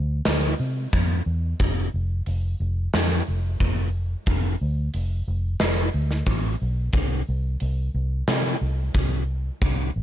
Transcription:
Already playing: D2
0.25 D2, snare, open hi-hat
0.60 C3
0.93 F2, kick, open hi-hat
1.26 E2
1.60 F1, kick, open hi-hat
1.94 F1
2.26 F1, open hi-hat
2.60 F1
2.93 F2, snare, open hi-hat
3.28 F1
3.60 F1, kick, open hi-hat
4.26 F1, kick, open hi-hat
4.61 D2
4.94 F1, open hi-hat
5.28 F1
5.60 F1, snare, open hi-hat
5.94 D2
6.11 snare
6.26 A1, kick, open hi-hat
6.62 B1
6.93 C2, kick, open hi-hat
7.29 C2
7.60 C2, open hi-hat
7.94 C2
8.28 C3, snare, open hi-hat
8.61 C2
8.94 C2, kick, open hi-hat
9.62 C2, kick, open hi-hat
9.96 A1

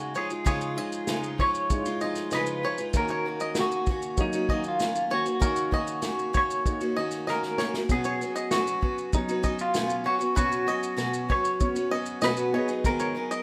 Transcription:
Already playing: C#3 G#3 D#4 F#4 C#5 F5
0.15 F3 G#3 D#4 F4 G#4 C#5, shaker
0.30 G#3 D#4 F4, shaker
0.45 C#3 F3 G#3 D#4 F4 G#4 C#5, kick, shaker
0.61 shaker
0.76 F3 G#3 D#4 F4 D#5
0.92 shaker
1.07 C#3 F3 G#3 D#4 F4, snare, shaker
1.23 shaker
1.38 F3 G#3 D#4 F4 C#5, kick
1.55 shaker
1.70 G#3 D#4 E4 C#5, kick, shaker
1.78 F4
1.85 G#3 D#4 F4, shaker
2.01 F3 G#3 D#4 F4 D#5, shaker
2.16 snare, shaker
2.31 C#3 F3 G#3 D#4 F4 B4 D#5, snare, shaker
2.46 shaker
2.63 F3 G#3 D#4 F4 C#5
2.78 G#3 D#4 F4, shaker
2.93 D#3 A#3 C#4 D#4 F#4 A#4 C#5, kick, shaker
3.08 C#5, shaker
3.25 D#3 A#3 C#4 F#4
3.40 D#5, shaker
3.55 D#3 A#3 C#4 F#4, snare, shaker
3.60 F#4
3.72 shaker
3.86 D#3 A#3 C#4, kick, shaker
3.91 F#4
4.02 shaker
4.17 F#3 A#3 D#4 C#5, kick, shaker
4.33 A#3 C#4 F#4, shaker
4.49 D#3 A#3 C#4 F#4 D#5, kick
4.64 shaker
4.68 F4
4.80 D#3 A#3 C#4, snare, shaker
4.95 shaker
5.10 D#3 A#3 C#4 F#4 C#5
5.25 A#3 C#4 F#4, shaker
5.40 D#3 A#3 C#4 D#4 F#4 A#4 C#5, kick, shaker
5.45 F#4
5.56 shaker
5.71 D#3 A#3 C#4 F#4 D#5, kick
5.87 shaker
6.02 D#3 A#3 C#4 F#4, snare, shaker
6.19 shaker
6.33 D#3 A#3 C#4 F#4 C#5, kick, shaker
6.37 C#5
6.50 shaker
6.66 A#3 D#4 F#4 C#5, kick, shaker
6.81 A#3 C#4 F#4, shaker
6.96 D#3 A#3 C#4 F#4 D#5
7.11 snare, shaker
7.27 D#3 A#3 C#4 F#4 A#4 D#5, snare
7.43 snare
7.58 D#3 A#3 C#4 C#5, snare
7.63 F#4
7.74 A#3 C#4 F#4, snare
7.89 B2 F#3 B3 C#4 F#4 G#4 C#5, kick, shaker
8.04 C#5, shaker
8.21 F#3 B3 C#4 F#4, shaker
8.36 D#5, shaker
8.51 B2 F#3 B3 C#4 F#4, snare, shaker
8.67 shaker
8.81 F#3 B3 C#4 F#4, kick
8.98 shaker
9.13 F#3 B3 C#4 D#4 C#5, kick, shaker
9.29 B3 C#4 F#4, shaker
9.43 F#3 B3 C#4 F#4 D#5, kick, shaker
9.59 F4, shaker
9.74 B2 F#3 B3 C#4, snare, shaker
9.90 shaker
10.04 F#3 B3 C#4 F#4 C#5
10.19 B3 C#4 F#4, shaker
10.35 B2 F#3 B3 C#4 F#4 B4 C#5, kick, shaker
10.52 shaker
10.67 F#3 B3 C#4 F#4 D#5, shaker
10.83 shaker
10.97 B2 F#3 B3 C#4 F#4, snare, shaker
11.14 shaker
11.28 F#3 B3 C#4 F#4 C#5, kick
11.45 shaker
11.60 B3 C#4 F#4 C#5, kick, shaker
11.75 B3 C#4 F#4, shaker
11.91 F#3 B3 C#4 F#4 D#5
12.06 shaker
12.21 B2 F#3 B3 C#4 F#4 B4 D#5, snare, shaker
12.37 shaker
12.52 F#3 B3 D#4 F#4 G#4 C#5 D#5
12.68 F#3 B3 D#4 G#4, shaker
12.84 G#2 D#3 F#3 B3 D#4 G#4 A#4, kick, shaker
12.99 C#5, shaker
13.15 F#3 B3 D#4 G#4
13.31 D#5, shaker

